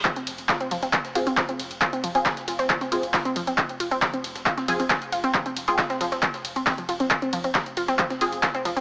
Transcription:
<<
  \new Staff \with { instrumentName = "Synth stab" } { \time 4/4 \key f \minor \tempo 4 = 136 r2 r8 <c' f' aes'>16 r4 r16 | r8. <c' f' aes'>16 r4. <c' f' aes'>16 r4 r16 | r2 r8 <c' f' aes'>16 r4 r16 | r8. <c' f' aes'>16 r2. |
r2 r8 <c' f' aes'>16 r4 r16 | }
  \new Staff \with { instrumentName = "Synth arpeggio sound" } { \time 4/4 \key f \minor f16 c'16 r8 f'16 c'16 f16 c'16 r8 f'16 c'16 f16 c'16 r8 | f'16 c'16 f16 c'16 r8 f'16 c'16 f16 c'16 r8 f'16 c'16 f16 c'16 | r8 f'16 c'16 f16 c'16 r8 f'16 c'16 f16 c'16 r8 f'16 c'16 | f16 c'16 r8 f'16 c'16 f16 c'16 r8. c'16 c'16 f16 f16 c'16 |
f'16 c'16 f16 c'16 r8 f'16 c'16 f16 c'16 r8 f'16 c'16 f16 c'16 | }
  \new Staff \with { instrumentName = "Sub bass" } { \clef bass \time 4/4 \key f \minor r8 f,,16 f,,16 r8 f,,16 f,,16 r8 f,,16 f,,16 r8 f,,16 f,,16 | r8 f,,16 f,,16 r8 f,,16 f,,16 r8 f,,16 f,,16 r8 f,,16 f,,16 | r8 f,,16 f,,16 r8 f,,16 f,,16 r8 f,,16 f,,16 r8 f,,16 f,,16 | r8 f,,16 f,,16 r8 f,,16 f,,16 r8 f,,16 f,,16 r8 f,,16 f,,16 |
r8 f,,16 f,,16 r8 f,,16 f,,16 r8 f,,16 f,,16 r8 f,,16 f,,16 | }
  \new DrumStaff \with { instrumentName = "Drums" } \drummode { \time 4/4 <hc hh bd>16 hh16 <hh hho cymr>16 hh16 <hc hh bd sn>16 hh16 <hh hho cymr>16 <hh sn>16 <hc hh bd>16 <hh sn>16 <hh hho cymr>16 hh16 <hc hh bd sn>16 hh16 <hh hho cymr>16 hh16 | <hc hh bd>16 hh16 <hh hho cymr>16 hho16 <hc hh bd sn>16 <hh sn>16 <hh hho cymr>16 <hh sn>16 <hc hh bd>16 <hho sn>16 <hh hho cymr>16 hh16 <hc hh hho bd sn>16 hh16 <hh hho cymr>16 hh16 | <hc hh bd>16 hh16 <hh hho cymr>16 hh16 <hc hh bd sn>16 hh16 <hh hho cymr>16 <hh sn>16 <hc hh bd>16 <hh sn>16 <hh hho cymr>16 hh16 <hc hh bd sn>16 hh16 <hh hho cymr>16 hh16 | <hc hh bd>16 hh16 <hh hho cymr>16 hho16 <hc hh bd sn>16 <hh sn>16 <hh hho cymr>16 <hh sn>16 <hc hh bd>16 <hho sn>16 <hh hho cymr>16 hh16 <hc hh hho bd sn>16 hh16 <hh hho cymr>16 hh16 |
<hc hh bd>16 hh16 <hh hho cymr>16 hh16 <hc hh bd sn>16 hh16 <hh hho cymr>16 <hh sn>16 <hc hh bd>16 <hh sn>16 <hh hho cymr>16 hh16 <hc hh bd sn>16 hh16 <hh hho cymr>16 hh16 | }
>>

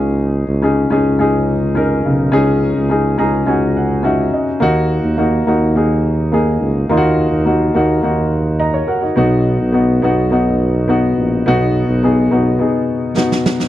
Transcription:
<<
  \new Staff \with { instrumentName = "Grand piano" } { \time 4/4 \key cis \dorian \tempo 4 = 105 << { r1 | r4. ais''8 gis''8 fis''8 e''8 dis''8 | r1 | r2. <dis'' ais''>16 <ais' cis''>16 <fis' ais' fis''>16 <dis' fis'>16~ |
<dis' fis'>16 r2. r8. | r1 | } \\ { <cis' dis' gis'>8 r8 <cis' dis' gis'>8 <cis' dis' gis'>8 <cis' dis' gis'>4 <cis' dis' ais'>4 | <cis' dis' gis'>4 <cis' dis' gis'>8 <cis' dis' gis'>8 <cis' dis' fis'>4 <cis' dis' fis'>4 | <ais dis' fis'>4 <ais dis' fis'>8 <ais dis' fis'>8 <ais dis' gis'>4 <ais dis' gis'>4 | <ais dis' eis' fis'>4 <ais dis' fis'>8 <ais dis' fis'>8 <ais dis' fis'>4 r4 |
<b dis' fis'>4 <b dis' fis'>8 <b dis' fis'>8 <b dis' fis'>4 <b dis' fis'>4 | <b dis' fis'>4 <b dis' gis'>8 <b dis' fis'>8 <b dis' gis'>4 <b dis' fis'>4 | } >> }
  \new Staff \with { instrumentName = "Grand piano" } { \clef bass \time 4/4 \key cis \dorian cis4 r2 r8 cis8~ | cis4 r2. | dis4. r2 r8 | dis4. r2 r8 |
b,4. r2 r8 | b,4. r2 r8 | }
  \new Staff \with { instrumentName = "Tuba" } { \clef bass \time 4/4 \key cis \dorian cis,8. cis,8. cis,2 b,,8 | cis,8. cis,8. cis,8 cis,4. r8 | dis,8. dis,8. dis,2 cis,8 | dis,8. dis,8. dis,8 dis,4. r8 |
b,,8. b,,8. b,,2 ais,,8 | b,,8. b,,8. b,,8 r2 | }
  \new DrumStaff \with { instrumentName = "Drums" } \drummode { \time 4/4 r4 r4 r4 r4 | r4 r4 r4 r4 | r4 r4 r4 r4 | r4 r4 r4 r4 |
r4 r4 r4 r4 | r4 r4 r4 sn16 sn16 sn16 sn16 | }
>>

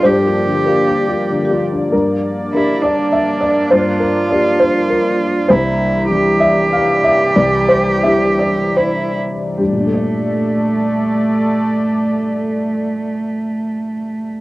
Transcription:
<<
  \new Staff \with { instrumentName = "Marimba" } { \time 3/4 \key g \dorian \tempo 4 = 95 g'16 bes'16 bes'16 g'16 f''16 f''16 g'16 f''16 d''16 g'16 r16 d''16 | r2. | r2. | r2. |
r2. | r2. | r2. | }
  \new Staff \with { instrumentName = "Upright piano" } { \time 3/4 \key g \dorian << { c''4 bes'4. r8 | bes'4. d''8 e''8 d''8 | c''8 bes'8 d''8 c''8 bes'4 | c''4. e''8 f''8 e''8 |
d''8 c''8 e''8 d''8 c''4 | <g, bes, g d' g' a' d''>2.~ | <g, bes, g d' g' a' d''>2. | } \\ { \tuplet 3/2 { g,8 f'8 d8 f'8 d'8 f'8 d8 f'8 d'8 } | g,4 <d' g' bes'>2 | g,4 <d' g' bes'>2 | c,4 <e d' g'>2 |
c,4 <d' e' g'>2 | r2. | r2. | } >> }
  \new Staff \with { instrumentName = "Cello" } { \time 3/4 \key g \dorian g'2~ g'8 r8 | r4 e'8 d'4. | f'2. | e'4 g'2~ |
g'2 e'8 r8 | a2.~ | a2. | }
  \new Staff \with { instrumentName = "Analog synth pad" } { \time 3/4 \key g \dorian <f bes d''>2. | <bes d' d''>2.~ | <bes d' d''>2. | <e g d''>2.~ |
<e g d''>2. | <a a' d''>2.~ | <a a' d''>2. | }
>>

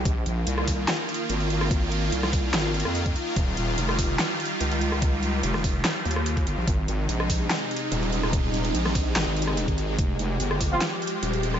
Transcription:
<<
  \new Staff \with { instrumentName = "Brass ensemble" } { \time 4/4 \key bes \dorian \tempo 4 = 145 r1 | r1 | r1 | r1 |
r1 | r1 | r4. r16 <f c' f'>16 r2 | }
  \new Staff \with { instrumentName = "Supersaw synth" } { \clef bass \time 4/4 \key bes \dorian << { <ees f'>1~ | <ees f'>1~ | <ees f'>1~ | <ees f'>1 |
<c ees'>1~ | <c ees'>1 | <f g'>1 | } \\ { bes1~ | bes1 | g1~ | g1 |
aes1~ | aes1~ | aes1 | } >> }
  \new Staff \with { instrumentName = "Wobble bass" } { \clef bass \time 4/4 \key bes \dorian bes,,8 bes,,8 c,4 r4 aes,,4~ | aes,,4 c,4 aes,,8. f,8. r8 | ees,,8 ees,,8 f,,4 r4 des,4~ | des,4 f,,4 r8 ees,4 g,,16 bes,,16 |
aes,,8 aes,,8 bes,,4 r4 ees,,4~ | ees,,4 bes,,4 aes,,16 aes,,4 aes,,8. | f,,8 f,,8 g,,4 r4 ees,,4 | }
  \new DrumStaff \with { instrumentName = "Drums" } \drummode { \time 4/4 <hh bd>8 hh8 hh16 ss16 <hho bd>8 <hc hh sn>8 hh32 hh16. hh16 hh16 hh16 ss16 | <hh bd>8 hh8 hh16 <ss sn>16 <hho bd>8 <hc hh sn>8 hh32 hh32 ss16 hh16 <hh bd>16 hh8 | <hh bd>8 hh8 hh16 ss16 <hho bd>8 <hc hh sn>8 hh32 hh16. hh16 hh16 hh16 ss16 | <hh bd>8 hh8 hh16 <ss sn>16 <hho bd>8 <hc hh sn>8 hh32 hh32 ss16 hh16 <hh bd>16 hh8 |
<hh bd>8 hh8 hh16 ss16 <hho bd>8 <hc hh sn>8 hh32 hh16. hh16 hh16 hh16 ss16 | <hh bd>8 hh16 hh16 hh16 <ss sn>16 <hho bd>8 <hc hh sn>8 hh32 hh32 ss16 hh16 <hh bd>16 hh8 | <hh bd>8 hh8 hh16 ss16 <hho bd>8 <hc hh sn>8 hh32 hh16. hh16 hh16 hh16 ss16 | }
>>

